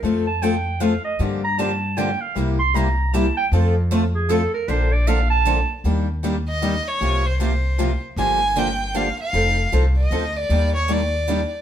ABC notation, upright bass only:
X:1
M:3/4
L:1/8
Q:"Swing" 1/4=155
K:Fmix
V:1 name="Upright bass" clef=bass
F,,6 | G,,6 | C,,6 | F,,6 |
B,,,6 | E,,6 | C,,6 | G,,,6 |
F,,,2 C,,2 D,,2 | E,,6 |]